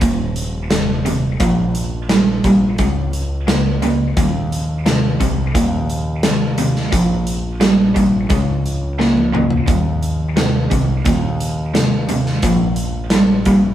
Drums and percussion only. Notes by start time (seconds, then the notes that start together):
0.01 kick, closed hi-hat
0.36 closed hi-hat
0.71 snare, closed hi-hat
1.06 closed hi-hat
1.40 kick, closed hi-hat
1.75 closed hi-hat
2.09 snare, closed hi-hat
2.44 kick, closed hi-hat
2.78 kick, closed hi-hat
3.13 closed hi-hat
3.48 snare, closed hi-hat
3.82 closed hi-hat
4.17 kick, closed hi-hat
4.52 closed hi-hat
4.86 snare, closed hi-hat
5.21 kick, closed hi-hat
5.55 kick, closed hi-hat
5.90 closed hi-hat
6.23 snare, closed hi-hat
6.58 closed hi-hat
6.76 snare
6.92 kick, closed hi-hat
7.27 closed hi-hat
7.61 snare, closed hi-hat
7.96 kick, closed hi-hat
8.30 kick, closed hi-hat
8.66 closed hi-hat
9.00 snare
9.17 high tom
9.35 mid tom
9.50 floor tom
9.68 kick, closed hi-hat
10.03 closed hi-hat
10.37 snare, closed hi-hat
10.71 kick, closed hi-hat
11.05 kick, closed hi-hat
11.40 closed hi-hat
11.75 snare, closed hi-hat
12.09 closed hi-hat
12.26 snare
12.42 kick, closed hi-hat
12.76 closed hi-hat
13.10 snare, closed hi-hat
13.45 kick, closed hi-hat